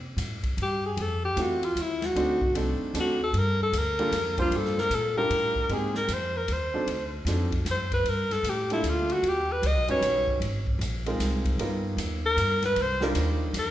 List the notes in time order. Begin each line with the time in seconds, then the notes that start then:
Already playing: C3
0.17 A2, hi-hat pedal, ride
0.43 muted upright bass stroke, kick, ride
0.57 G2, ride
0.63 G4
0.86 G#4
0.97 F2, ride
1.01 A4
1.25 G4
1.36 E2 A3 C4 E4 F4 G4, hi-hat pedal, ride
1.41 F#4
1.63 F4, ride
1.75 D#2, hi-hat pedal, ride
1.81 E4
2.02 F#4, snare, ride
2.15 D2 A3 C4 D4 D#4 F#4, ride
2.41 kick
2.55 C2 A3 C4 D4 D#4 A4, ride
2.94 D#2 A3 C4 D4 D#4 A4, hi-hat pedal, ride
3.00 F#4
3.24 A4
3.33 G2, ride
3.38 A#4
3.63 A4
3.73 D2, hi-hat pedal, ride
3.78 A#4
3.99 G3 A#3 D4 F4 A4, ride
4.11 F2, snare, hi-hat pedal, ride
4.38 G3 A#3 D4 F4 C5, kick, ride
4.51 G2, ride
4.57 A4
4.65 snare
4.78 A#4, snare
4.90 A#2, hi-hat pedal, ride
4.95 A4
5.17 G3 D4 F4 G4 A#4
5.30 A2, ride
5.55 kick
5.69 G#2 G#3 A#3 C4 D#4 G4, ride
5.73 G#4
5.95 A#4, snare
6.08 F2, hi-hat pedal, ride
6.13 C5
6.37 A#4
6.48 D#2, hi-hat pedal, ride
6.53 C5
6.74 F#3 C4 D4 D#4 A4
6.87 D2, ride
7.25 F2 F#3 C4 D4 D#4 A4, snare, hi-hat pedal, ride
7.52 kick, ride
7.65 F#2, snare, hi-hat pedal, ride
7.71 C5
7.91 B4, kick, ride
8.04 G2, ride
8.09 A#4
8.31 A4, snare, ride
8.43 A2, hi-hat pedal, ride
8.49 G4
8.70 G3 A#3 D4 E4 F4 A4, ride
8.83 D2, hi-hat pedal, ride
8.89 F4
9.10 F#4, ride
9.23 D#2, ride
9.29 G4
9.52 B4
9.62 C#2, hi-hat pedal, ride
9.67 D#5
9.75 B1
9.88 G1 G3 C#4 D#4 F#4 B4 C#5, ride
10.01 B1, hi-hat pedal, ride
10.27 kick
10.40 G#1, ride
10.67 kick
10.79 A#1, hi-hat pedal, ride
11.06 G#3 C4 D#4 F4 A#4, ride
11.19 C2, snare, hi-hat pedal, ride
11.45 kick, ride
11.58 G2 G3 B3 D#4 F4 A#4, ride
11.97 D#2, hi-hat pedal, ride
12.26 A#4
12.37 G2, hi-hat pedal, ride
12.62 B4, snare, ride
12.76 C2, ride
12.82 C5
13.01 G3 D4 D#4 F4 A#4, snare
13.15 D#2, hi-hat pedal, ride
13.53 F2, hi-hat pedal, ride
13.59 A#4